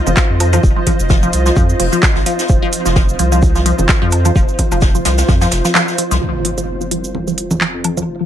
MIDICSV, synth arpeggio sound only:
0, 0, Header, 1, 2, 480
1, 0, Start_track
1, 0, Tempo, 465116
1, 655, Time_signature, 4, 2, 24, 8
1, 8520, End_track
2, 0, Start_track
2, 0, Title_t, "Synth arpeggio sound"
2, 0, Program_c, 0, 84
2, 68, Note_on_c, 0, 53, 77
2, 96, Note_off_c, 0, 53, 0
2, 176, Note_on_c, 0, 53, 104
2, 228, Note_off_c, 0, 53, 0
2, 416, Note_on_c, 0, 53, 77
2, 450, Note_off_c, 0, 53, 0
2, 548, Note_on_c, 0, 53, 105
2, 590, Note_off_c, 0, 53, 0
2, 788, Note_on_c, 0, 53, 77
2, 816, Note_off_c, 0, 53, 0
2, 895, Note_on_c, 0, 53, 102
2, 947, Note_off_c, 0, 53, 0
2, 1135, Note_on_c, 0, 53, 81
2, 1170, Note_off_c, 0, 53, 0
2, 1267, Note_on_c, 0, 53, 101
2, 1310, Note_off_c, 0, 53, 0
2, 1508, Note_on_c, 0, 53, 77
2, 1536, Note_off_c, 0, 53, 0
2, 1615, Note_on_c, 0, 53, 102
2, 1667, Note_off_c, 0, 53, 0
2, 1855, Note_on_c, 0, 53, 76
2, 1890, Note_off_c, 0, 53, 0
2, 1987, Note_on_c, 0, 53, 101
2, 2030, Note_off_c, 0, 53, 0
2, 2228, Note_on_c, 0, 53, 77
2, 2256, Note_off_c, 0, 53, 0
2, 2334, Note_on_c, 0, 53, 99
2, 2387, Note_off_c, 0, 53, 0
2, 2575, Note_on_c, 0, 53, 80
2, 2610, Note_off_c, 0, 53, 0
2, 2708, Note_on_c, 0, 53, 104
2, 2750, Note_off_c, 0, 53, 0
2, 2947, Note_on_c, 0, 53, 78
2, 2975, Note_off_c, 0, 53, 0
2, 3055, Note_on_c, 0, 53, 101
2, 3107, Note_off_c, 0, 53, 0
2, 3296, Note_on_c, 0, 53, 77
2, 3330, Note_off_c, 0, 53, 0
2, 3428, Note_on_c, 0, 53, 102
2, 3470, Note_off_c, 0, 53, 0
2, 3667, Note_on_c, 0, 53, 77
2, 3696, Note_off_c, 0, 53, 0
2, 3775, Note_on_c, 0, 53, 98
2, 3827, Note_off_c, 0, 53, 0
2, 4015, Note_on_c, 0, 53, 83
2, 4050, Note_off_c, 0, 53, 0
2, 4147, Note_on_c, 0, 53, 101
2, 4190, Note_off_c, 0, 53, 0
2, 4388, Note_on_c, 0, 53, 79
2, 4416, Note_off_c, 0, 53, 0
2, 4495, Note_on_c, 0, 53, 101
2, 4547, Note_off_c, 0, 53, 0
2, 4734, Note_on_c, 0, 53, 76
2, 4769, Note_off_c, 0, 53, 0
2, 4867, Note_on_c, 0, 53, 102
2, 4910, Note_off_c, 0, 53, 0
2, 5108, Note_on_c, 0, 53, 75
2, 5136, Note_off_c, 0, 53, 0
2, 5215, Note_on_c, 0, 53, 103
2, 5267, Note_off_c, 0, 53, 0
2, 5455, Note_on_c, 0, 53, 85
2, 5490, Note_off_c, 0, 53, 0
2, 5588, Note_on_c, 0, 53, 101
2, 5630, Note_off_c, 0, 53, 0
2, 5828, Note_on_c, 0, 53, 80
2, 5856, Note_off_c, 0, 53, 0
2, 5935, Note_on_c, 0, 53, 103
2, 5987, Note_off_c, 0, 53, 0
2, 6176, Note_on_c, 0, 53, 74
2, 6211, Note_off_c, 0, 53, 0
2, 6309, Note_on_c, 0, 53, 105
2, 6351, Note_off_c, 0, 53, 0
2, 6414, Note_on_c, 0, 53, 96
2, 6467, Note_off_c, 0, 53, 0
2, 6655, Note_on_c, 0, 53, 76
2, 6690, Note_off_c, 0, 53, 0
2, 6787, Note_on_c, 0, 53, 100
2, 6830, Note_off_c, 0, 53, 0
2, 7028, Note_on_c, 0, 53, 72
2, 7056, Note_off_c, 0, 53, 0
2, 7134, Note_on_c, 0, 53, 98
2, 7187, Note_off_c, 0, 53, 0
2, 7374, Note_on_c, 0, 53, 82
2, 7410, Note_off_c, 0, 53, 0
2, 7507, Note_on_c, 0, 53, 95
2, 7550, Note_off_c, 0, 53, 0
2, 7747, Note_on_c, 0, 53, 74
2, 7775, Note_off_c, 0, 53, 0
2, 7855, Note_on_c, 0, 53, 96
2, 7907, Note_off_c, 0, 53, 0
2, 8095, Note_on_c, 0, 53, 72
2, 8130, Note_off_c, 0, 53, 0
2, 8227, Note_on_c, 0, 53, 102
2, 8270, Note_off_c, 0, 53, 0
2, 8468, Note_on_c, 0, 53, 73
2, 8496, Note_off_c, 0, 53, 0
2, 8520, End_track
0, 0, End_of_file